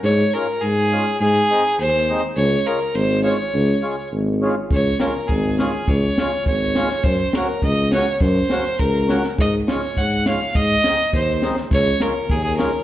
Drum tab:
SD |--------|--------|--------|--------|
BD |--------|--------|--------|--------|

SD |--o---o-|--o---oo|--o---o-|--oo--oo|
BD |o---o---|o---o---|o---o---|o---o---|

SD |--o---o-|--o---oo|--o---o-|
BD |o---o---|o---o---|o---o---|